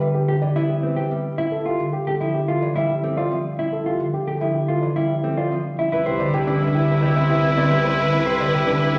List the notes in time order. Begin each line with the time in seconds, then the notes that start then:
Already playing: D3 E3 B3
0.01 G3 E5
0.14 G4
0.28 G4 B4
0.42 E3 D5
0.56 B3 E4 E5
0.69 G4
0.83 C4 B4
0.96 G4
1.10 G3 E5
1.38 E4 E5
1.51 A4
1.65 F4 G4
1.80 D3
1.93 G4
2.07 G4 A4
2.20 F3 E4 E5
2.34 G4
2.48 F4 A4
2.62 E3 D5
2.76 G3 E4 E5
2.90 G4
3.03 G3 C4 A4
3.17 F4 D5
3.31 F3 E5
3.59 E4 E5
3.72 A4
3.86 F4 G4
4.00 D3
4.14 G4
4.27 G4 A4
4.40 F3 E4 E5
4.54 G4
4.68 F4 A4
4.82 E3 D5
4.96 G3 E4 E5
5.10 G4
5.23 G3 C4 A4
5.37 F4 D5
5.51 F3 E5
5.79 E4 E5
5.92 C2 E4 B4
6.06 C3 G4 C5
6.20 D3 G4 D5
6.34 C3 G4
6.47 D3 D4 B4
6.61 G3 B4 E5
6.75 E4 G4
6.89 C3 B4
7.03 E3 G4 D5
7.16 B3 C4 E5
7.30 C3 E4 G4
7.43 B3 B4
7.57 D3 C4 D5
7.71 G3 G4 E5
7.84 C4 C5
7.99 D3 E5
8.13 E4 B4
8.26 C3 G4 C5
8.40 D3 G4 D5
8.54 C3 G4
8.67 D3 D4 B4
8.81 G3 B4 E5
8.95 E4 G4